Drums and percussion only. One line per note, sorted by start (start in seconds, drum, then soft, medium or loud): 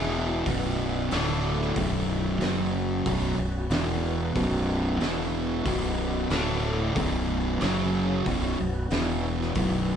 0.46 kick medium
0.46 open hi-hat medium
1.11 snare loud
1.11 open hi-hat medium
1.61 snare soft
1.76 kick loud
1.76 open hi-hat medium
2.41 snare loud
2.41 open hi-hat soft
3.06 kick loud
3.06 open hi-hat medium
3.70 snare loud
3.70 open hi-hat medium
4.36 kick loud
4.36 open hi-hat medium
5.01 snare loud
5.01 open hi-hat soft
5.66 kick loud
5.66 open hi-hat medium
6.30 snare loud
6.30 open hi-hat medium
6.96 kick loud
6.96 open hi-hat medium
7.61 snare medium
7.61 open hi-hat medium
8.26 kick loud
8.26 open hi-hat medium
8.90 snare loud
8.90 open hi-hat medium
9.41 snare soft
9.55 kick loud
9.55 open hi-hat medium